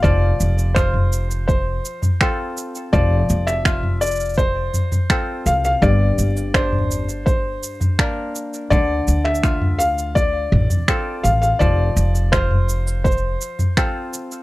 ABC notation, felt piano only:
X:1
M:4/4
L:1/16
Q:1/4=83
K:F
V:1 name="Felt piano"
d4 c4 c6 z2 | d3 e3 d2 c6 f f | d4 c4 c6 z2 | d3 e3 f2 d6 f f |
d4 c4 c6 z2 |]